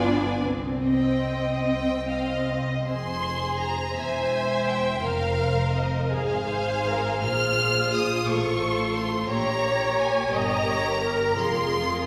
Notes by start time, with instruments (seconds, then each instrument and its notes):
Already playing: double bass section G1, viola section B3, violin section D5 G#5
0.03 cello section D4
0.43 double bass section C2, cello section C4
0.85 viola section C4, violin section D#5 G5
1.66 double bass section C2, violin section G5
2.09 viola section C4, violin section D#5 F5
2.50 violin section D#5
2.87 double bass section F1, cello section F2, violin section G#4 C5 C6
3.61 violin section A#5
3.97 double bass section E1, cello section E2, viola section C5, violin section C5 E5 G#5
4.68 violin section G5
5.02 double bass section F1, cello section F2, violin section A#4 C5 F5, viola section A#4
5.74 violin section D#5
6.11 double bass section G#1, cello section G#2, viola section G#4, violin section G#4 C5 F5
6.48 viola section C5
6.88 viola section A#4
7.23 double bass section A#1, cello section A#2, violin section F4 F6, viola section G#4
7.93 violin section D#6
8.28 double bass section A1, cello section A2, viola section A4, violin section C#6
8.95 violin section C6
9.30 double bass section A#1, cello section A#2, violin section G4 C#5 A#5, viola section C#5
10.00 violin section G#5
10.34 double bass section G1, cello section G2, violin section A#4 A#5, viola section D#5
10.68 viola section C#5
11.02 viola section A#4
11.37 double bass section F1, cello section F2, violin section F4 C6, viola section G#4